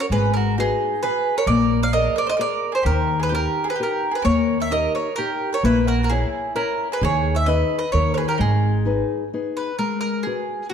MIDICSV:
0, 0, Header, 1, 5, 480
1, 0, Start_track
1, 0, Key_signature, 5, "minor"
1, 0, Tempo, 461538
1, 104, Time_signature, 3, 2, 24, 8
1, 11165, End_track
2, 0, Start_track
2, 0, Title_t, "Mandolin"
2, 0, Program_c, 0, 25
2, 1, Note_on_c, 0, 73, 96
2, 50, Note_off_c, 0, 73, 0
2, 128, Note_on_c, 0, 71, 83
2, 345, Note_off_c, 0, 71, 0
2, 349, Note_on_c, 0, 70, 76
2, 564, Note_off_c, 0, 70, 0
2, 623, Note_on_c, 0, 68, 82
2, 1045, Note_off_c, 0, 68, 0
2, 1067, Note_on_c, 0, 71, 91
2, 1397, Note_off_c, 0, 71, 0
2, 1433, Note_on_c, 0, 73, 93
2, 1527, Note_off_c, 0, 73, 0
2, 1531, Note_on_c, 0, 74, 87
2, 1867, Note_off_c, 0, 74, 0
2, 1905, Note_on_c, 0, 77, 99
2, 2006, Note_off_c, 0, 77, 0
2, 2007, Note_on_c, 0, 75, 86
2, 2237, Note_off_c, 0, 75, 0
2, 2269, Note_on_c, 0, 74, 86
2, 2370, Note_off_c, 0, 74, 0
2, 2386, Note_on_c, 0, 75, 91
2, 2435, Note_off_c, 0, 75, 0
2, 2505, Note_on_c, 0, 74, 93
2, 2855, Note_off_c, 0, 74, 0
2, 2859, Note_on_c, 0, 72, 75
2, 2964, Note_off_c, 0, 72, 0
2, 2975, Note_on_c, 0, 70, 84
2, 3347, Note_off_c, 0, 70, 0
2, 3358, Note_on_c, 0, 71, 87
2, 3454, Note_off_c, 0, 71, 0
2, 3480, Note_on_c, 0, 70, 82
2, 3806, Note_off_c, 0, 70, 0
2, 3847, Note_on_c, 0, 71, 82
2, 3940, Note_off_c, 0, 71, 0
2, 3983, Note_on_c, 0, 70, 69
2, 4299, Note_off_c, 0, 70, 0
2, 4319, Note_on_c, 0, 71, 78
2, 4414, Note_off_c, 0, 71, 0
2, 4418, Note_on_c, 0, 73, 84
2, 4756, Note_off_c, 0, 73, 0
2, 4800, Note_on_c, 0, 76, 86
2, 4899, Note_off_c, 0, 76, 0
2, 4908, Note_on_c, 0, 75, 86
2, 5142, Note_off_c, 0, 75, 0
2, 5146, Note_on_c, 0, 73, 68
2, 5359, Note_off_c, 0, 73, 0
2, 5363, Note_on_c, 0, 70, 81
2, 5708, Note_off_c, 0, 70, 0
2, 5761, Note_on_c, 0, 73, 89
2, 5859, Note_off_c, 0, 73, 0
2, 5874, Note_on_c, 0, 71, 86
2, 6095, Note_off_c, 0, 71, 0
2, 6116, Note_on_c, 0, 70, 79
2, 6259, Note_off_c, 0, 70, 0
2, 6283, Note_on_c, 0, 70, 67
2, 6339, Note_on_c, 0, 68, 75
2, 6344, Note_off_c, 0, 70, 0
2, 6780, Note_off_c, 0, 68, 0
2, 6819, Note_on_c, 0, 70, 74
2, 7151, Note_off_c, 0, 70, 0
2, 7209, Note_on_c, 0, 71, 89
2, 7299, Note_off_c, 0, 71, 0
2, 7326, Note_on_c, 0, 73, 82
2, 7646, Note_off_c, 0, 73, 0
2, 7655, Note_on_c, 0, 76, 79
2, 7761, Note_off_c, 0, 76, 0
2, 7761, Note_on_c, 0, 75, 75
2, 8061, Note_off_c, 0, 75, 0
2, 8098, Note_on_c, 0, 75, 78
2, 8233, Note_off_c, 0, 75, 0
2, 8237, Note_on_c, 0, 73, 76
2, 8443, Note_off_c, 0, 73, 0
2, 8467, Note_on_c, 0, 73, 55
2, 8496, Note_off_c, 0, 73, 0
2, 8503, Note_on_c, 0, 71, 65
2, 8607, Note_off_c, 0, 71, 0
2, 8617, Note_on_c, 0, 70, 73
2, 8722, Note_off_c, 0, 70, 0
2, 8743, Note_on_c, 0, 68, 67
2, 9661, Note_off_c, 0, 68, 0
2, 9950, Note_on_c, 0, 71, 70
2, 10166, Note_off_c, 0, 71, 0
2, 10176, Note_on_c, 0, 70, 68
2, 10394, Note_off_c, 0, 70, 0
2, 10407, Note_on_c, 0, 70, 84
2, 10640, Note_on_c, 0, 68, 62
2, 10660, Note_off_c, 0, 70, 0
2, 11101, Note_off_c, 0, 68, 0
2, 11124, Note_on_c, 0, 66, 62
2, 11165, Note_off_c, 0, 66, 0
2, 11165, End_track
3, 0, Start_track
3, 0, Title_t, "Mandolin"
3, 0, Program_c, 1, 25
3, 16, Note_on_c, 1, 70, 58
3, 62, Note_off_c, 1, 70, 0
3, 123, Note_on_c, 1, 68, 72
3, 343, Note_off_c, 1, 68, 0
3, 380, Note_on_c, 1, 66, 67
3, 580, Note_off_c, 1, 66, 0
3, 602, Note_on_c, 1, 63, 61
3, 1034, Note_off_c, 1, 63, 0
3, 1076, Note_on_c, 1, 68, 70
3, 1401, Note_off_c, 1, 68, 0
3, 1431, Note_on_c, 1, 70, 74
3, 1527, Note_off_c, 1, 70, 0
3, 1540, Note_on_c, 1, 70, 86
3, 1871, Note_off_c, 1, 70, 0
3, 1899, Note_on_c, 1, 74, 57
3, 2003, Note_off_c, 1, 74, 0
3, 2012, Note_on_c, 1, 70, 82
3, 2232, Note_off_c, 1, 70, 0
3, 2244, Note_on_c, 1, 70, 74
3, 2355, Note_off_c, 1, 70, 0
3, 2359, Note_on_c, 1, 72, 83
3, 2411, Note_off_c, 1, 72, 0
3, 2463, Note_on_c, 1, 70, 76
3, 2813, Note_off_c, 1, 70, 0
3, 2830, Note_on_c, 1, 68, 55
3, 2938, Note_off_c, 1, 68, 0
3, 2942, Note_on_c, 1, 67, 67
3, 3293, Note_off_c, 1, 67, 0
3, 3323, Note_on_c, 1, 68, 54
3, 3419, Note_off_c, 1, 68, 0
3, 3423, Note_on_c, 1, 67, 62
3, 3775, Note_off_c, 1, 67, 0
3, 3787, Note_on_c, 1, 68, 69
3, 3903, Note_off_c, 1, 68, 0
3, 3907, Note_on_c, 1, 67, 62
3, 4258, Note_off_c, 1, 67, 0
3, 4279, Note_on_c, 1, 68, 54
3, 4391, Note_on_c, 1, 70, 73
3, 4396, Note_off_c, 1, 68, 0
3, 4742, Note_off_c, 1, 70, 0
3, 4787, Note_on_c, 1, 73, 55
3, 4892, Note_off_c, 1, 73, 0
3, 4901, Note_on_c, 1, 70, 70
3, 5130, Note_off_c, 1, 70, 0
3, 5155, Note_on_c, 1, 70, 58
3, 5366, Note_off_c, 1, 70, 0
3, 5388, Note_on_c, 1, 67, 63
3, 5721, Note_off_c, 1, 67, 0
3, 5747, Note_on_c, 1, 70, 59
3, 5852, Note_off_c, 1, 70, 0
3, 5882, Note_on_c, 1, 64, 75
3, 6099, Note_off_c, 1, 64, 0
3, 6109, Note_on_c, 1, 66, 65
3, 6255, Note_off_c, 1, 66, 0
3, 6272, Note_on_c, 1, 66, 44
3, 6333, Note_off_c, 1, 66, 0
3, 6350, Note_on_c, 1, 64, 60
3, 6786, Note_off_c, 1, 64, 0
3, 6823, Note_on_c, 1, 64, 65
3, 7154, Note_off_c, 1, 64, 0
3, 7198, Note_on_c, 1, 68, 55
3, 7294, Note_off_c, 1, 68, 0
3, 7311, Note_on_c, 1, 68, 82
3, 7638, Note_off_c, 1, 68, 0
3, 7641, Note_on_c, 1, 73, 62
3, 7753, Note_off_c, 1, 73, 0
3, 7787, Note_on_c, 1, 71, 72
3, 8074, Note_off_c, 1, 71, 0
3, 8095, Note_on_c, 1, 71, 59
3, 8240, Note_off_c, 1, 71, 0
3, 8250, Note_on_c, 1, 70, 63
3, 8450, Note_off_c, 1, 70, 0
3, 8465, Note_on_c, 1, 70, 51
3, 8493, Note_off_c, 1, 70, 0
3, 8500, Note_on_c, 1, 68, 56
3, 8605, Note_off_c, 1, 68, 0
3, 8611, Note_on_c, 1, 67, 52
3, 8709, Note_off_c, 1, 67, 0
3, 8713, Note_on_c, 1, 63, 58
3, 9646, Note_off_c, 1, 63, 0
3, 11165, End_track
4, 0, Start_track
4, 0, Title_t, "Nylon-string guitar"
4, 0, Program_c, 2, 24
4, 126, Note_on_c, 2, 56, 64
4, 578, Note_off_c, 2, 56, 0
4, 606, Note_on_c, 2, 66, 43
4, 618, Note_on_c, 2, 68, 33
4, 618, Note_on_c, 2, 71, 49
4, 976, Note_off_c, 2, 66, 0
4, 982, Note_off_c, 2, 71, 0
4, 983, Note_off_c, 2, 68, 0
4, 1077, Note_on_c, 2, 66, 45
4, 1079, Note_on_c, 2, 68, 42
4, 1084, Note_on_c, 2, 71, 42
4, 1449, Note_off_c, 2, 68, 0
4, 1449, Note_off_c, 2, 71, 0
4, 1450, Note_off_c, 2, 66, 0
4, 1553, Note_on_c, 2, 58, 63
4, 2004, Note_off_c, 2, 58, 0
4, 2036, Note_on_c, 2, 68, 46
4, 2037, Note_on_c, 2, 70, 38
4, 2045, Note_on_c, 2, 74, 47
4, 2408, Note_off_c, 2, 70, 0
4, 2409, Note_off_c, 2, 68, 0
4, 2410, Note_off_c, 2, 74, 0
4, 2487, Note_on_c, 2, 68, 40
4, 2493, Note_on_c, 2, 70, 43
4, 2502, Note_on_c, 2, 74, 37
4, 2872, Note_off_c, 2, 68, 0
4, 2875, Note_off_c, 2, 70, 0
4, 2880, Note_off_c, 2, 74, 0
4, 2970, Note_on_c, 2, 51, 66
4, 3436, Note_off_c, 2, 51, 0
4, 3450, Note_on_c, 2, 63, 37
4, 3460, Note_on_c, 2, 67, 37
4, 3466, Note_on_c, 2, 70, 38
4, 3836, Note_off_c, 2, 63, 0
4, 3842, Note_off_c, 2, 67, 0
4, 3844, Note_off_c, 2, 70, 0
4, 3949, Note_on_c, 2, 63, 33
4, 3954, Note_on_c, 2, 67, 31
4, 3957, Note_on_c, 2, 70, 42
4, 4328, Note_off_c, 2, 63, 0
4, 4330, Note_off_c, 2, 67, 0
4, 4330, Note_off_c, 2, 70, 0
4, 4413, Note_on_c, 2, 58, 58
4, 4881, Note_off_c, 2, 58, 0
4, 4895, Note_on_c, 2, 63, 48
4, 4907, Note_on_c, 2, 67, 37
4, 4913, Note_on_c, 2, 70, 46
4, 5281, Note_off_c, 2, 63, 0
4, 5288, Note_off_c, 2, 67, 0
4, 5291, Note_off_c, 2, 70, 0
4, 5390, Note_on_c, 2, 63, 39
4, 5398, Note_on_c, 2, 67, 33
4, 5399, Note_on_c, 2, 70, 51
4, 5768, Note_off_c, 2, 63, 0
4, 5770, Note_off_c, 2, 67, 0
4, 5774, Note_off_c, 2, 70, 0
4, 5861, Note_on_c, 2, 58, 65
4, 6322, Note_off_c, 2, 58, 0
4, 6352, Note_on_c, 2, 64, 46
4, 6363, Note_on_c, 2, 70, 36
4, 6369, Note_on_c, 2, 73, 45
4, 6726, Note_off_c, 2, 64, 0
4, 6734, Note_off_c, 2, 70, 0
4, 6735, Note_off_c, 2, 73, 0
4, 6812, Note_on_c, 2, 64, 39
4, 6818, Note_on_c, 2, 70, 42
4, 6827, Note_on_c, 2, 73, 44
4, 7193, Note_off_c, 2, 64, 0
4, 7197, Note_off_c, 2, 70, 0
4, 7203, Note_off_c, 2, 73, 0
4, 7293, Note_on_c, 2, 51, 71
4, 7755, Note_off_c, 2, 51, 0
4, 7773, Note_on_c, 2, 63, 43
4, 7777, Note_on_c, 2, 71, 46
4, 7784, Note_on_c, 2, 68, 35
4, 8154, Note_off_c, 2, 63, 0
4, 8157, Note_off_c, 2, 71, 0
4, 8160, Note_off_c, 2, 68, 0
4, 8249, Note_on_c, 2, 51, 61
4, 8714, Note_off_c, 2, 51, 0
4, 8725, Note_on_c, 2, 56, 64
4, 9193, Note_off_c, 2, 56, 0
4, 9208, Note_on_c, 2, 63, 45
4, 9214, Note_on_c, 2, 68, 40
4, 9221, Note_on_c, 2, 71, 43
4, 9597, Note_off_c, 2, 63, 0
4, 9600, Note_off_c, 2, 68, 0
4, 9604, Note_off_c, 2, 71, 0
4, 9709, Note_on_c, 2, 63, 38
4, 9714, Note_on_c, 2, 68, 38
4, 9715, Note_on_c, 2, 71, 45
4, 10093, Note_off_c, 2, 63, 0
4, 10093, Note_off_c, 2, 68, 0
4, 10096, Note_off_c, 2, 71, 0
4, 10179, Note_on_c, 2, 56, 65
4, 10650, Note_off_c, 2, 56, 0
4, 10677, Note_on_c, 2, 66, 39
4, 10678, Note_on_c, 2, 68, 34
4, 10684, Note_on_c, 2, 71, 39
4, 11058, Note_off_c, 2, 68, 0
4, 11059, Note_off_c, 2, 66, 0
4, 11063, Note_off_c, 2, 71, 0
4, 11165, End_track
5, 0, Start_track
5, 0, Title_t, "Upright bass"
5, 0, Program_c, 3, 32
5, 103, Note_on_c, 3, 32, 69
5, 722, Note_off_c, 3, 32, 0
5, 1524, Note_on_c, 3, 34, 81
5, 2147, Note_off_c, 3, 34, 0
5, 2964, Note_on_c, 3, 39, 76
5, 3591, Note_off_c, 3, 39, 0
5, 4422, Note_on_c, 3, 39, 65
5, 5046, Note_off_c, 3, 39, 0
5, 5859, Note_on_c, 3, 34, 72
5, 6478, Note_off_c, 3, 34, 0
5, 7296, Note_on_c, 3, 39, 82
5, 7916, Note_off_c, 3, 39, 0
5, 8252, Note_on_c, 3, 39, 80
5, 8563, Note_off_c, 3, 39, 0
5, 8735, Note_on_c, 3, 32, 75
5, 9361, Note_off_c, 3, 32, 0
5, 11165, End_track
0, 0, End_of_file